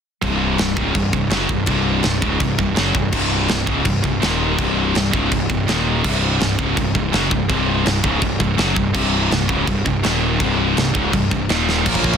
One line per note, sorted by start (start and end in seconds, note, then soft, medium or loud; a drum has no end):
0.22 0.56 C1 medium
0.22 0.58 C2 medium
0.22 0.59 G2 loud
0.22 0.59 C3 loud
0.22 kick loud
0.22 china medium
0.58 0.76 C1 medium
0.58 0.74 C2 medium
0.58 0.74 G2 medium
0.58 snare loud
0.58 china medium
0.76 0.94 C#1 loud
0.76 0.95 C#2 medium
0.76 0.95 G#2 loud
0.76 0.95 C#3 loud
0.76 kick loud
0.95 1.12 C1 medium
0.95 1.10 C2 medium
0.95 1.10 G2 medium
0.95 kick loud
0.95 china medium
1.13 1.30 C1 medium
1.13 1.28 C2 medium
1.13 1.28 G2 medium
1.13 kick medium
1.30 1.48 F#1 loud
1.30 1.50 F#2 loud
1.30 1.50 C#3 loud
1.30 1.50 F#3 loud
1.30 snare loud
1.30 china medium
1.49 1.67 C1 medium
1.49 1.65 C2 medium
1.49 1.65 G2 medium
1.49 kick loud
1.66 2.02 C1 loud
1.66 2.03 C2 loud
1.66 2.03 G2 loud
1.66 2.05 C3 medium
1.66 kick loud
1.66 china medium
2.03 2.21 C1 medium
2.03 2.19 C2 medium
2.03 2.19 G2 medium
2.03 snare loud
2.03 china medium
2.22 2.40 C#1 loud
2.22 2.40 C#2 medium
2.22 2.40 G#2 loud
2.22 2.41 C#3 loud
2.22 kick loud
2.40 2.58 C1 medium
2.40 2.56 C2 medium
2.40 2.56 G2 medium
2.40 kick loud
2.40 china medium
2.58 2.76 C1 medium
2.58 2.73 C2 medium
2.58 2.73 G2 medium
2.58 kick medium
2.76 2.94 F#1 medium
2.76 2.95 F#2 loud
2.76 2.95 C#3 loud
2.76 2.95 F#3 loud
2.76 snare loud
2.76 china medium
2.95 3.12 C1 medium
2.95 3.10 C2 medium
2.95 3.10 G2 medium
2.95 kick loud
3.12 3.47 C1 medium
3.12 3.49 C2 medium
3.12 3.49 G2 medium
3.12 3.50 C3 loud
3.12 kick loud
3.12 china medium
3.12 crash loud
3.48 3.67 C1 medium
3.48 3.65 C2 medium
3.48 3.65 G2 medium
3.48 snare loud
3.48 china medium
3.67 3.85 C#1 loud
3.67 3.85 C#2 medium
3.67 3.85 G#2 loud
3.67 3.86 C#3 loud
3.67 kick loud
3.85 4.03 C1 medium
3.85 4.00 C2 medium
3.85 4.01 G2 medium
3.85 kick loud
3.85 china medium
4.04 4.21 C1 medium
4.04 4.19 C2 medium
4.04 4.19 G2 medium
4.04 kick loud
4.22 4.56 D#1 loud
4.22 4.58 D#2 medium
4.22 4.58 A#2 loud
4.22 4.58 D#3 loud
4.22 snare loud
4.22 china medium
4.58 4.93 C1 medium
4.58 4.94 C2 medium
4.58 4.95 G2 loud
4.58 4.95 C3 loud
4.58 kick loud
4.58 china medium
4.95 5.12 C1 medium
4.95 5.10 C2 medium
4.95 5.10 G2 medium
4.95 snare loud
4.95 china medium
5.13 5.30 C#1 medium
5.13 5.31 C#2 medium
5.13 5.31 G#2 medium
5.13 5.32 C#3 loud
5.13 kick loud
5.32 5.49 C1 medium
5.32 5.47 C2 medium
5.32 5.47 G2 medium
5.32 kick medium
5.32 china medium
5.50 5.67 C1 medium
5.50 5.64 C2 medium
5.50 5.65 G2 medium
5.50 kick loud
5.68 6.02 D#1 loud
5.68 6.04 D#2 loud
5.68 6.04 A#2 loud
5.68 6.05 D#3 loud
5.68 snare loud
5.68 china medium
6.04 6.38 C1 medium
6.04 6.40 C2 loud
6.04 6.40 G2 loud
6.04 6.41 C3 loud
6.04 kick loud
6.04 crash loud
6.04 china medium
6.40 6.58 C1 medium
6.40 6.56 C2 medium
6.40 6.56 G2 medium
6.40 snare loud
6.40 china medium
6.59 6.76 C#1 medium
6.59 6.77 C#2 medium
6.59 6.77 G#2 medium
6.59 6.78 C#3 loud
6.59 kick loud
6.77 6.94 C1 medium
6.77 6.92 C2 medium
6.77 6.92 G2 medium
6.77 kick loud
6.77 china medium
6.95 7.12 C1 medium
6.95 7.10 C2 medium
6.95 7.10 G2 medium
6.95 kick medium
7.12 7.30 F#1 loud
7.12 7.30 F#2 loud
7.12 7.31 C#3 loud
7.12 7.31 F#3 loud
7.12 snare loud
7.12 china medium
7.30 7.48 C1 medium
7.30 7.45 C2 medium
7.30 7.46 G2 medium
7.30 kick loud
7.49 7.84 C1 medium
7.49 7.85 C2 medium
7.49 7.85 G2 loud
7.49 7.86 C3 loud
7.49 kick loud
7.49 china medium
7.86 8.03 C1 medium
7.86 8.01 C2 medium
7.86 8.01 G2 medium
7.86 snare loud
7.86 china medium
8.04 8.21 C#1 loud
8.04 8.22 C#2 medium
8.04 8.21 G#2 medium
8.04 8.22 C#3 loud
8.04 kick loud
8.22 8.39 C1 medium
8.22 8.37 C2 medium
8.22 8.37 G2 medium
8.22 kick loud
8.22 china medium
8.40 8.57 C1 medium
8.40 8.55 C2 medium
8.40 8.55 G2 medium
8.40 kick medium
8.57 8.75 F#1 loud
8.57 8.75 F#2 loud
8.57 8.76 C#3 loud
8.57 8.76 F#3 loud
8.57 snare loud
8.57 china medium
8.75 8.94 C1 medium
8.75 8.91 C2 medium
8.75 8.91 G2 medium
8.75 kick loud
8.94 9.29 C1 medium
8.94 9.29 C2 medium
8.94 9.30 G2 loud
8.94 9.31 C3 loud
8.94 kick loud
8.94 crash loud
8.94 china medium
9.30 9.48 C1 medium
9.30 9.45 C2 medium
9.30 9.46 G2 medium
9.30 snare loud
9.30 china medium
9.49 9.66 C#1 loud
9.49 9.67 C#2 medium
9.49 9.67 G#2 medium
9.49 9.68 C#3 medium
9.49 kick loud
9.67 9.85 C1 medium
9.67 9.82 C2 medium
9.67 9.83 G2 medium
9.67 kick loud
9.67 china medium
9.85 10.03 C1 medium
9.85 10.00 C2 medium
9.85 10.00 G2 medium
9.85 kick medium
10.03 10.38 D#1 loud
10.03 10.39 D#2 loud
10.03 10.40 A#2 loud
10.03 10.40 D#3 loud
10.03 snare loud
10.03 china medium
10.40 10.74 C1 medium
10.40 10.76 C2 loud
10.40 10.76 G2 medium
10.40 10.77 C3 loud
10.40 kick loud
10.40 china medium
10.76 10.93 C1 medium
10.76 10.92 C2 medium
10.76 10.92 G2 medium
10.76 snare loud
10.76 china medium
10.95 11.12 C#1 loud
10.95 11.13 C#2 medium
10.95 11.13 G#2 loud
10.95 11.13 C#3 medium
10.95 kick loud
11.13 11.30 C1 medium
11.13 11.28 C2 medium
11.13 11.28 G2 medium
11.13 kick loud
11.13 china medium
11.31 11.48 C1 medium
11.31 11.46 C2 medium
11.31 11.46 G2 medium
11.31 kick loud
11.49 11.83 D#1 loud
11.49 11.85 D#2 loud
11.49 11.86 A#2 loud
11.49 11.86 D#3 loud
11.49 snare loud
11.49 china medium
11.69 snare medium
11.85 12.03 A#1 loud
11.85 12.17 A#2 medium
11.85 11.93 A#2 medium
11.85 12.17 F3 medium
11.85 11.95 F3 medium
11.85 12.17 A#3 medium
11.85 12.17 A#3 loud
11.85 12.17 C#4 loud
11.85 12.17 F4 medium
11.85 12.17 A#4 medium
11.85 12.17 C#5 medium
11.85 kick medium
11.85 crash loud
11.85 china medium
11.94 12.01 A#2 medium
11.94 12.02 F3 medium
11.94 kick medium
12.02 12.17 A#1 medium
12.02 12.09 A#2 medium
12.02 12.10 F3 medium
12.02 kick medium
12.09 12.16 A#2 medium
12.09 12.17 F3 medium
12.14 kick medium